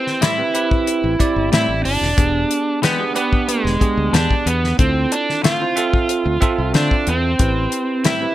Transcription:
Already playing: C4 E4 G4 B4
0.07 snare
0.21 A2 G3 C4 E4, snare, closed hi-hat
0.38 C4 E4 G4 B4
0.54 C4 E4 G4 B4, closed hi-hat
0.71 kick
0.87 closed hi-hat
1.04 A1
1.19 C4 E4 G4 D5, kick, closed hi-hat
1.36 G1
1.52 A2 G3 C4 E4, snare, closed hi-hat
1.69 A1
1.85 G1 D4, open hi-hat
2.01 E1, snare
2.17 E1 B3 D4 G4 G#4, kick, closed hi-hat
2.51 closed hi-hat
2.82 E3 G#3 B3 D4 G4, snare, closed hi-hat
2.99 B3 D4 G4 G#4
3.14 B3 D4 G4 B4, closed hi-hat
3.33 kick
3.48 G#3, closed hi-hat
3.65 E1, snare
3.80 B3 D4 G4 G#4, kick, closed hi-hat
3.97 D2
4.13 E2 E3 G#3 D4 G4, snare, closed hi-hat
4.31 kick
4.46 E2 B3, closed hi-hat
4.64 snare
4.78 D2 C4 E4 F4 A4, kick, closed hi-hat
5.12 D4, closed hi-hat
5.30 snare
5.43 D3 A3 C4 F4, snare, closed hi-hat
5.60 C4 E4 F4 C5
5.76 C4 F4 A4 E5, closed hi-hat
5.94 kick
6.09 closed hi-hat
6.26 D2
6.41 C4 F4 A4 E5, kick, closed hi-hat
6.58 C2
6.74 D3 A3 C4 D4 F4, snare, closed hi-hat
6.91 kick
7.07 E2 C4, closed hi-hat
7.39 A1 C4 E4 G4 B4, kick, closed hi-hat
7.72 closed hi-hat
8.04 A2 G3 C4 E4, snare, closed hi-hat
8.20 C4 E4 G4 B4

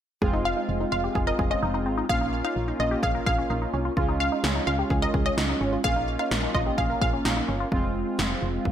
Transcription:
0.22 F1 G#3 C4 F4 G#4, kick
0.33 D#4
0.45 F5
0.57 D#4
0.69 F1
0.80 D#4
0.92 F1 F4 F5
1.04 G4
1.15 F1 G#4, kick
1.27 A#4 D#5
1.39 F1 G#4, kick
1.51 C#4 D#5
1.62 F1 D#4
1.74 D#4
1.86 G#1 C4
1.98 D#4
2.09 A#1 A#3 C#4 F4 G#4 F5, kick
2.21 D#4
2.44 D#4 F5
2.56 A#1
2.68 D#4
2.80 A#1 F4 D#5
2.91 G4
3.03 A#1 G#4 F5, kick
3.15 A#4
3.26 A#1 G#4 F5, kick
3.38 C#4
3.50 A#1 D#4
3.62 D#4
3.73 C2 C#4
3.85 F4
3.97 C#2 G#3 C#4 F4, kick
4.09 D#4
4.20 F5
4.32 D#4
4.44 C#2, snare
4.55 D#4
4.67 C#2 F4 F5
4.79 G4
4.90 C#2 G#4, kick
5.02 A#4 D#5
5.14 C#2 G#4, kick
5.26 C#4 D#5
5.37 C#2 D#4, snare
5.49 D#4
5.61 G#1 C#4
5.73 F4
5.84 A#1 A#3 C#4 F4 G#4 F5, kick
5.96 D#4
6.19 D#4 F5
6.31 A#1, snare
6.43 D#4
6.55 A#1 F4 D#5, kick
6.66 G4
6.78 A#1 G#4 F5, kick
6.90 A#4
7.02 A#1 G#4 F5, kick
7.13 C#4
7.25 A#1 D#4, snare
7.37 D#4
7.48 G1 C#4
7.60 F4
7.72 F1 G#3 C4 F4, kick
8.19 F1, snare
8.42 F1
8.65 F1, kick

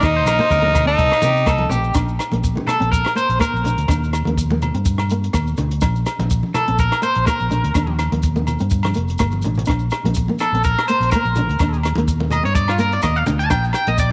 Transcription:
Already playing: A#4
0.01 D#2 D#4, kick, cross-stick, low agogo, maracas
0.16 C5
0.26 A#1 A#4, cross-stick, closed hi-hat, high conga, low agogo, maracas
0.39 A#3 C5, low conga, maracas
0.50 D2 A#4, kick, high conga, maracas
0.62 A#3 A#4, high conga
0.74 kick, closed hi-hat, low conga, low agogo, maracas
0.85 C4 D#4 A4, maracas
0.98 C2, kick, maracas
1.12 cross-stick, low agogo
1.22 C3 A#3 G4, closed hi-hat, high conga, maracas
1.36 maracas
1.46 C2 A#3 A4, kick, cross-stick, low agogo, maracas
1.58 high conga
1.69 A#1 C4 G4, closed hi-hat, low conga, maracas
1.84 maracas
1.94 A#1 D4, kick, cross-stick, closed hi-hat, low agogo, maracas
2.08 maracas
2.19 cross-stick, closed hi-hat, low agogo, maracas
2.32 A#1 A#3, closed hi-hat, high conga
2.44 kick, closed hi-hat, maracas
2.55 A#3, high conga
2.67 A4, cross-stick, closed hi-hat, low conga, low agogo, maracas
2.80 A#1 C4, closed hi-hat
2.92 A#4, kick, closed hi-hat, maracas
3.05 cross-stick, low agogo
3.15 A#3 C5, closed hi-hat, maracas
3.29 A#1, closed hi-hat, maracas
3.39 A#3 A#4, kick, cross-stick, closed hi-hat, low agogo, maracas
3.54 A#1, maracas
3.64 D4, closed hi-hat, low conga, maracas
3.77 D2, closed hi-hat, maracas
3.88 D#2 D4, kick, cross-stick, closed hi-hat, low agogo, maracas
4.04 maracas
4.13 cross-stick, closed hi-hat, low agogo, maracas
4.25 D#2 A#3, closed hi-hat, high conga
4.38 kick, closed hi-hat, maracas
4.51 A#3, high conga
4.62 closed hi-hat, low conga, low agogo, maracas
4.74 G2 C4, closed hi-hat
4.85 kick, closed hi-hat, maracas
4.98 cross-stick, low agogo
5.10 A#3, closed hi-hat, maracas
5.24 closed hi-hat, maracas
5.33 D#2 A#3, kick, cross-stick, closed hi-hat, low agogo, maracas
5.47 maracas
5.57 D2 D4, closed hi-hat, low conga, maracas
5.71 closed hi-hat, maracas
5.81 A#1 D4, kick, cross-stick, closed hi-hat, low agogo, maracas
5.95 maracas
6.06 cross-stick, closed hi-hat, low agogo, maracas
6.19 A#1, muted nylon-string guitar stroke, closed hi-hat, high conga
6.30 kick, closed hi-hat, maracas
6.43 high conga
6.54 A4, cross-stick, closed hi-hat, low conga, low agogo, maracas
6.68 A#1 C4, closed hi-hat
6.78 A#4, kick, closed hi-hat, maracas
6.92 cross-stick, low agogo
7.02 A#3 C5, closed hi-hat, maracas
7.15 A#1, closed hi-hat, maracas
7.26 A#3 A#4, kick, cross-stick, closed hi-hat, low agogo, maracas
7.40 A#1, maracas
7.50 D4, closed hi-hat, low conga, maracas
7.64 D2, closed hi-hat, maracas
7.74 D#2 D4, kick, cross-stick, closed hi-hat, low agogo, maracas
7.87 high conga
7.99 cross-stick, closed hi-hat, low agogo, maracas
8.12 D#2 A#3, closed hi-hat, high conga
8.23 kick, closed hi-hat, maracas
8.36 A#3, high conga, maracas
8.47 closed hi-hat, low conga, low agogo, maracas
8.59 G2 C4, closed hi-hat, maracas
8.70 kick, closed hi-hat, maracas
8.83 cross-stick, high conga, low agogo, maracas
8.94 F1 A#3, closed hi-hat, maracas
9.08 closed hi-hat, maracas
9.18 G1 A#3, kick, cross-stick, closed hi-hat, low agogo, maracas
9.31 high conga, maracas
9.42 A1 D4, closed hi-hat, low conga, maracas
9.55 low conga, maracas
9.59 closed hi-hat
9.65 A#1 D4, kick, cross-stick, closed hi-hat, low agogo, maracas
9.79 maracas
9.91 cross-stick, closed hi-hat, low agogo, maracas
10.04 A#1 A#3, closed hi-hat, high conga
10.14 kick, closed hi-hat, maracas
10.28 A#3, high conga
10.39 A4, cross-stick, closed hi-hat, low agogo, maracas
10.53 A#1 C4, closed hi-hat
10.64 A#4, kick, closed hi-hat, maracas
10.79 cross-stick, low agogo
10.88 A#3 C5, closed hi-hat, maracas
11.00 A#1, closed hi-hat, maracas
11.11 A#4, kick, cross-stick, closed hi-hat, low agogo, maracas
11.15 A#3
11.25 A#1, maracas
11.35 D4, closed hi-hat, low conga, maracas
11.48 D2, closed hi-hat, maracas
11.59 D#2 D4, kick, cross-stick, closed hi-hat, low agogo, maracas
11.73 maracas
11.83 cross-stick, closed hi-hat, low agogo, maracas
11.96 D#2 A#3, closed hi-hat, high conga
12.08 kick, closed hi-hat, maracas
12.20 A#3, high conga
12.30 D#5, closed hi-hat, low conga, low agogo, maracas
12.43 G2 C4 C#5, closed hi-hat
12.55 D5, kick, closed hi-hat, maracas
12.68 F4, cross-stick, low agogo
12.78 A#3 A#4, closed hi-hat, maracas
12.92 D5, closed hi-hat, maracas
13.02 D#2 A#3 D#5, kick, cross-stick, closed hi-hat, low agogo, maracas
13.16 F5, maracas
13.26 D2 D4, muted clean electric guitar stroke, closed hi-hat, low conga, maracas
13.39 A5, closed hi-hat, maracas
13.50 A#1 D4 G5, kick, cross-stick, closed hi-hat, low agogo, maracas
13.64 maracas
13.73 G5, cross-stick, closed hi-hat, low agogo, maracas
13.87 A#1 A#3 D#5, closed hi-hat
13.98 D5, kick, closed hi-hat, maracas

